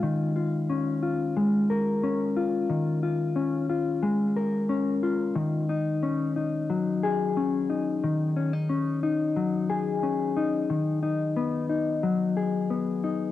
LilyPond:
\new Staff \with { instrumentName = "Clean electric guitar" } { \time 4/4 \key bes \phrygian \tempo 4 = 90 ees8 f'8 des'8 f'8 aes8 bes'8 des'8 f'8 | ees8 f'8 des'8 f'8 aes8 bes'8 des'8 f'8 | ees8 ees'8 des'8 ees'8 ges8 aes'8 des'8 ees'8 | ees8 des'16 ees'16 des'8 ees'8 ges8 aes'8 des'8 ees'8 |
ees8 ees'8 ces'8 ees'8 ges8 aes'8 ces'8 ees'8 | }